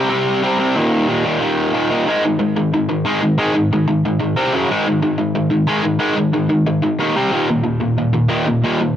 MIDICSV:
0, 0, Header, 1, 2, 480
1, 0, Start_track
1, 0, Tempo, 328048
1, 1119, Time_signature, 4, 2, 24, 8
1, 13118, End_track
2, 0, Start_track
2, 0, Title_t, "Overdriven electric guitar"
2, 0, Program_c, 0, 29
2, 141, Note_on_c, 0, 60, 121
2, 146, Note_on_c, 0, 55, 108
2, 154, Note_on_c, 0, 48, 97
2, 617, Note_off_c, 0, 60, 0
2, 623, Note_off_c, 0, 55, 0
2, 634, Note_on_c, 0, 60, 84
2, 637, Note_off_c, 0, 48, 0
2, 641, Note_on_c, 0, 55, 90
2, 654, Note_on_c, 0, 48, 85
2, 843, Note_off_c, 0, 48, 0
2, 846, Note_off_c, 0, 55, 0
2, 855, Note_off_c, 0, 60, 0
2, 860, Note_on_c, 0, 48, 85
2, 864, Note_on_c, 0, 55, 89
2, 872, Note_on_c, 0, 60, 96
2, 1095, Note_off_c, 0, 48, 0
2, 1097, Note_off_c, 0, 55, 0
2, 1101, Note_off_c, 0, 60, 0
2, 1110, Note_on_c, 0, 39, 96
2, 1114, Note_on_c, 0, 51, 94
2, 1116, Note_on_c, 0, 46, 109
2, 1573, Note_off_c, 0, 39, 0
2, 1577, Note_off_c, 0, 46, 0
2, 1581, Note_off_c, 0, 51, 0
2, 1591, Note_on_c, 0, 39, 83
2, 1595, Note_on_c, 0, 46, 82
2, 1599, Note_on_c, 0, 51, 84
2, 1804, Note_off_c, 0, 51, 0
2, 1813, Note_off_c, 0, 46, 0
2, 1818, Note_off_c, 0, 39, 0
2, 1822, Note_on_c, 0, 51, 87
2, 1830, Note_on_c, 0, 46, 81
2, 1835, Note_on_c, 0, 39, 72
2, 2032, Note_off_c, 0, 39, 0
2, 2042, Note_off_c, 0, 46, 0
2, 2046, Note_off_c, 0, 51, 0
2, 2050, Note_on_c, 0, 39, 101
2, 2060, Note_on_c, 0, 46, 103
2, 2063, Note_on_c, 0, 51, 108
2, 2514, Note_off_c, 0, 39, 0
2, 2524, Note_off_c, 0, 46, 0
2, 2525, Note_off_c, 0, 51, 0
2, 2532, Note_on_c, 0, 39, 86
2, 2541, Note_on_c, 0, 46, 91
2, 2542, Note_on_c, 0, 51, 100
2, 2766, Note_off_c, 0, 51, 0
2, 2779, Note_off_c, 0, 46, 0
2, 2782, Note_off_c, 0, 39, 0
2, 2783, Note_on_c, 0, 51, 98
2, 2797, Note_on_c, 0, 46, 76
2, 2799, Note_on_c, 0, 39, 86
2, 3015, Note_off_c, 0, 51, 0
2, 3022, Note_off_c, 0, 46, 0
2, 3023, Note_off_c, 0, 39, 0
2, 3029, Note_on_c, 0, 44, 83
2, 3040, Note_on_c, 0, 51, 81
2, 3048, Note_on_c, 0, 56, 92
2, 3258, Note_off_c, 0, 44, 0
2, 3263, Note_off_c, 0, 51, 0
2, 3267, Note_off_c, 0, 56, 0
2, 3288, Note_on_c, 0, 51, 74
2, 3289, Note_on_c, 0, 44, 67
2, 3479, Note_off_c, 0, 44, 0
2, 3482, Note_off_c, 0, 51, 0
2, 3496, Note_on_c, 0, 44, 72
2, 3499, Note_on_c, 0, 51, 71
2, 3722, Note_off_c, 0, 44, 0
2, 3723, Note_off_c, 0, 51, 0
2, 3749, Note_on_c, 0, 44, 66
2, 3757, Note_on_c, 0, 51, 77
2, 3968, Note_off_c, 0, 44, 0
2, 3972, Note_off_c, 0, 51, 0
2, 4004, Note_on_c, 0, 44, 83
2, 4009, Note_on_c, 0, 51, 76
2, 4207, Note_off_c, 0, 44, 0
2, 4218, Note_off_c, 0, 51, 0
2, 4225, Note_on_c, 0, 44, 75
2, 4236, Note_on_c, 0, 51, 75
2, 4446, Note_off_c, 0, 44, 0
2, 4451, Note_off_c, 0, 51, 0
2, 4465, Note_on_c, 0, 44, 79
2, 4476, Note_on_c, 0, 51, 99
2, 4482, Note_on_c, 0, 56, 92
2, 4696, Note_off_c, 0, 44, 0
2, 4701, Note_off_c, 0, 51, 0
2, 4704, Note_off_c, 0, 56, 0
2, 4714, Note_on_c, 0, 44, 62
2, 4723, Note_on_c, 0, 51, 68
2, 4930, Note_off_c, 0, 44, 0
2, 4932, Note_off_c, 0, 51, 0
2, 4947, Note_on_c, 0, 44, 77
2, 4950, Note_on_c, 0, 51, 91
2, 4966, Note_on_c, 0, 56, 91
2, 5168, Note_off_c, 0, 44, 0
2, 5173, Note_off_c, 0, 51, 0
2, 5186, Note_off_c, 0, 56, 0
2, 5186, Note_on_c, 0, 44, 73
2, 5191, Note_on_c, 0, 51, 85
2, 5407, Note_off_c, 0, 44, 0
2, 5409, Note_off_c, 0, 51, 0
2, 5457, Note_on_c, 0, 51, 82
2, 5459, Note_on_c, 0, 44, 68
2, 5659, Note_off_c, 0, 51, 0
2, 5664, Note_off_c, 0, 44, 0
2, 5676, Note_on_c, 0, 51, 76
2, 5678, Note_on_c, 0, 44, 63
2, 5892, Note_off_c, 0, 51, 0
2, 5893, Note_off_c, 0, 44, 0
2, 5934, Note_on_c, 0, 51, 86
2, 5935, Note_on_c, 0, 44, 76
2, 6126, Note_off_c, 0, 44, 0
2, 6136, Note_off_c, 0, 51, 0
2, 6144, Note_on_c, 0, 44, 80
2, 6153, Note_on_c, 0, 51, 85
2, 6366, Note_off_c, 0, 44, 0
2, 6371, Note_off_c, 0, 51, 0
2, 6388, Note_on_c, 0, 48, 97
2, 6394, Note_on_c, 0, 55, 91
2, 6403, Note_on_c, 0, 60, 96
2, 6618, Note_off_c, 0, 48, 0
2, 6621, Note_off_c, 0, 55, 0
2, 6625, Note_off_c, 0, 60, 0
2, 6639, Note_on_c, 0, 42, 95
2, 6640, Note_on_c, 0, 49, 95
2, 6654, Note_on_c, 0, 54, 100
2, 6864, Note_off_c, 0, 42, 0
2, 6864, Note_off_c, 0, 49, 0
2, 6871, Note_off_c, 0, 54, 0
2, 6880, Note_on_c, 0, 44, 85
2, 6895, Note_on_c, 0, 51, 86
2, 6896, Note_on_c, 0, 56, 90
2, 7104, Note_off_c, 0, 44, 0
2, 7112, Note_off_c, 0, 51, 0
2, 7112, Note_off_c, 0, 56, 0
2, 7127, Note_on_c, 0, 44, 78
2, 7135, Note_on_c, 0, 51, 86
2, 7337, Note_off_c, 0, 51, 0
2, 7338, Note_off_c, 0, 44, 0
2, 7354, Note_on_c, 0, 51, 85
2, 7359, Note_on_c, 0, 44, 74
2, 7562, Note_off_c, 0, 51, 0
2, 7563, Note_off_c, 0, 44, 0
2, 7579, Note_on_c, 0, 51, 75
2, 7581, Note_on_c, 0, 44, 61
2, 7804, Note_off_c, 0, 51, 0
2, 7805, Note_off_c, 0, 44, 0
2, 7829, Note_on_c, 0, 44, 76
2, 7831, Note_on_c, 0, 51, 85
2, 8030, Note_off_c, 0, 44, 0
2, 8045, Note_off_c, 0, 51, 0
2, 8048, Note_on_c, 0, 44, 77
2, 8062, Note_on_c, 0, 51, 79
2, 8279, Note_off_c, 0, 44, 0
2, 8286, Note_off_c, 0, 51, 0
2, 8298, Note_on_c, 0, 44, 90
2, 8309, Note_on_c, 0, 51, 95
2, 8311, Note_on_c, 0, 56, 101
2, 8517, Note_off_c, 0, 44, 0
2, 8534, Note_off_c, 0, 51, 0
2, 8535, Note_on_c, 0, 44, 69
2, 8540, Note_off_c, 0, 56, 0
2, 8552, Note_on_c, 0, 51, 78
2, 8754, Note_off_c, 0, 44, 0
2, 8764, Note_off_c, 0, 51, 0
2, 8772, Note_on_c, 0, 44, 82
2, 8782, Note_on_c, 0, 51, 92
2, 8783, Note_on_c, 0, 56, 95
2, 9000, Note_off_c, 0, 44, 0
2, 9006, Note_off_c, 0, 51, 0
2, 9016, Note_off_c, 0, 56, 0
2, 9018, Note_on_c, 0, 44, 76
2, 9024, Note_on_c, 0, 51, 78
2, 9244, Note_off_c, 0, 44, 0
2, 9247, Note_off_c, 0, 51, 0
2, 9271, Note_on_c, 0, 44, 69
2, 9280, Note_on_c, 0, 51, 81
2, 9483, Note_off_c, 0, 44, 0
2, 9496, Note_off_c, 0, 51, 0
2, 9501, Note_on_c, 0, 44, 62
2, 9510, Note_on_c, 0, 51, 75
2, 9726, Note_off_c, 0, 44, 0
2, 9731, Note_off_c, 0, 51, 0
2, 9753, Note_on_c, 0, 51, 82
2, 9755, Note_on_c, 0, 44, 68
2, 9967, Note_off_c, 0, 44, 0
2, 9972, Note_off_c, 0, 51, 0
2, 9985, Note_on_c, 0, 44, 62
2, 9998, Note_on_c, 0, 51, 76
2, 10208, Note_off_c, 0, 44, 0
2, 10215, Note_off_c, 0, 51, 0
2, 10230, Note_on_c, 0, 39, 85
2, 10244, Note_on_c, 0, 51, 96
2, 10245, Note_on_c, 0, 46, 89
2, 10460, Note_off_c, 0, 39, 0
2, 10468, Note_off_c, 0, 46, 0
2, 10468, Note_off_c, 0, 51, 0
2, 10473, Note_on_c, 0, 48, 90
2, 10484, Note_on_c, 0, 55, 86
2, 10490, Note_on_c, 0, 60, 93
2, 10702, Note_off_c, 0, 48, 0
2, 10707, Note_off_c, 0, 55, 0
2, 10710, Note_off_c, 0, 60, 0
2, 10714, Note_on_c, 0, 39, 79
2, 10722, Note_on_c, 0, 51, 95
2, 10723, Note_on_c, 0, 46, 86
2, 10943, Note_off_c, 0, 39, 0
2, 10947, Note_off_c, 0, 46, 0
2, 10947, Note_off_c, 0, 51, 0
2, 10970, Note_on_c, 0, 39, 73
2, 10970, Note_on_c, 0, 46, 77
2, 11159, Note_off_c, 0, 39, 0
2, 11163, Note_off_c, 0, 46, 0
2, 11177, Note_on_c, 0, 39, 67
2, 11181, Note_on_c, 0, 46, 81
2, 11400, Note_off_c, 0, 39, 0
2, 11407, Note_off_c, 0, 46, 0
2, 11418, Note_on_c, 0, 39, 63
2, 11431, Note_on_c, 0, 46, 76
2, 11645, Note_off_c, 0, 39, 0
2, 11652, Note_off_c, 0, 46, 0
2, 11677, Note_on_c, 0, 39, 66
2, 11682, Note_on_c, 0, 46, 72
2, 11880, Note_off_c, 0, 39, 0
2, 11889, Note_off_c, 0, 46, 0
2, 11898, Note_on_c, 0, 39, 74
2, 11907, Note_on_c, 0, 46, 72
2, 12106, Note_off_c, 0, 39, 0
2, 12118, Note_off_c, 0, 46, 0
2, 12123, Note_on_c, 0, 39, 80
2, 12135, Note_on_c, 0, 46, 101
2, 12135, Note_on_c, 0, 51, 95
2, 12368, Note_off_c, 0, 39, 0
2, 12374, Note_off_c, 0, 46, 0
2, 12374, Note_off_c, 0, 51, 0
2, 12393, Note_on_c, 0, 39, 78
2, 12398, Note_on_c, 0, 46, 81
2, 12614, Note_off_c, 0, 39, 0
2, 12616, Note_off_c, 0, 46, 0
2, 12644, Note_on_c, 0, 39, 90
2, 12651, Note_on_c, 0, 46, 84
2, 12654, Note_on_c, 0, 51, 93
2, 12869, Note_off_c, 0, 39, 0
2, 12873, Note_off_c, 0, 46, 0
2, 12874, Note_off_c, 0, 51, 0
2, 12895, Note_on_c, 0, 39, 77
2, 12897, Note_on_c, 0, 46, 83
2, 13105, Note_off_c, 0, 39, 0
2, 13106, Note_off_c, 0, 46, 0
2, 13118, End_track
0, 0, End_of_file